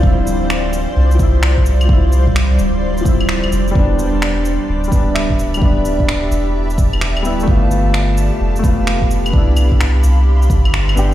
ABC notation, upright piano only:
X:1
M:4/4
L:1/8
Q:"Swing 16ths" 1/4=129
K:Ddor
V:1 name="Upright piano"
[F,CE]4- [F,CE] [F,CE]3 | [F,CE]4- [F,CE] [F,CE]3 | [G,B,D]4- [G,B,D] [G,B,D]3 | [G,B,D]6- [G,B,D] [G,B,E] |
[A,B,F]4- [A,B,F] [A,B,F]3 | [B,DE]6- [B,DE] [B,DG] |]